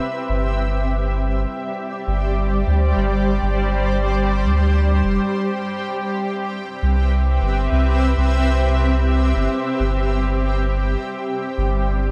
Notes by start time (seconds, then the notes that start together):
Already playing: C4 G4 B4 E5
0.29 G1
0.59 G3
0.79 D5
1.38 C5
2.07 G1
2.67 D2
2.97 G1
3.42 G1
4.45 D2
5.04 F1
5.34 C4
5.63 E5
5.98 B4
6.83 C2
7.42 G1
7.72 C2
8.17 C2
9.36 G1
9.80 G1
10.09 G3
10.57 C5
11.22 D5
11.58 G1